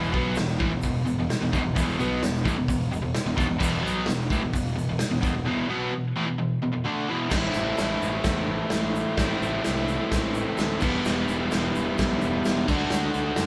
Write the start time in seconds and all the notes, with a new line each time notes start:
Already playing: E1 E2 B2 E3
0.03 shaker
0.12 B1 B2 F#3 B3, kick
0.35 E1 E2 B2, snare, open hi-hat, shaker
0.48 shaker
0.59 A1 A2 E3, kick
0.72 E1 E2 B2
0.82 E1 E2 B2, kick, open hi-hat, shaker
0.96 shaker
1.05 E1 E2 B2, shaker
1.19 E1 E2 B2
1.30 muted overdriven electric guitar stroke, muted fingered electric bass stroke, snare, open hi-hat, shaker
1.41 E1 E2 B2
1.52 E1 E2 B2, kick, shaker
1.63 E1 E2 B2
1.75 E1 E2 B2 E3, kick, open hi-hat, shaker
1.89 shaker
1.99 B1 B2 F#3 B3, shaker
2.23 E1 E2 B2, snare, open hi-hat, shaker
2.35 shaker
2.44 A1 A2 E3, kick, shaker
2.57 E1 E2 B2
2.68 E1 E2 B2, kick, open hi-hat, shaker
2.82 shaker
2.90 E1 E2 B2, shaker
3.01 E1 E2 B2
3.15 muted fingered electric bass stroke, muted overdriven electric guitar stroke, snare, open hi-hat, shaker
3.26 E1 E2 B2
3.36 E1 E2 B2, kick
3.40 shaker
3.49 E1 E2 B2
3.59 E1 E2 B2 E3, kick, crash, shaker
3.82 B1 B2 F#3 B3
3.87 shaker
4.06 E1 E2 B2, snare, open hi-hat, shaker
4.21 shaker
4.30 A1 A2 E3, kick, shaker
4.42 E1 E2 B2
4.53 E1 E2 B2, kick, open hi-hat, shaker
4.66 shaker
4.76 E2 B2, shaker
4.80 E1
4.89 E1 E2 B2
4.99 muted overdriven electric guitar stroke, muted fingered electric bass stroke, snare, open hi-hat, shaker
5.11 E1 E2 B2
5.21 E1 E2 B2, kick, shaker
5.34 E1 E2 B2
5.45 E2 B2 E3
5.68 B2 F#3 B3
5.91 E2 B2
6.16 A2 E3
6.26 E2 B2
6.38 E2 B2
6.62 E2 B2
6.72 E2 B2
6.84 D3 A3 D4
7.07 E2 B2 E3
7.29 A1 A2 E3 A3, kick, snare, crash, shaker
7.34 C4 E4
7.54 A1, shaker
7.78 A1, snare, crash, shaker
8.02 A1, shaker
8.24 E2, kick, snare, crash, shaker
8.48 A1
8.70 A1, snare, crash, shaker
8.95 shaker
9.17 A1 A2 E3 A3 C4, kick, snare, crash, shaker
9.22 E4
9.42 A1, shaker
9.64 C2, snare, crash, shaker
9.88 shaker
10.12 A1, kick, snare, crash, shaker
10.35 shaker
10.58 D2, snare, crash, shaker
10.79 E1 E2 B2 E3 G3 B3, kick, crash, shaker
10.84 E4
11.05 E1, snare, crash, shaker
11.28 E1, shaker
11.51 E1, snare, crash, shaker
11.75 E1, shaker
11.98 B1, kick, snare, crash, shaker
12.22 E1, shaker
12.45 E1, snare, crash, shaker
12.67 D2 D3 A3 D4, kick, crash, shaker
12.72 F#4
12.90 D2, snare, crash, shaker
13.14 D2, shaker
13.36 F#2, snare, crash, shaker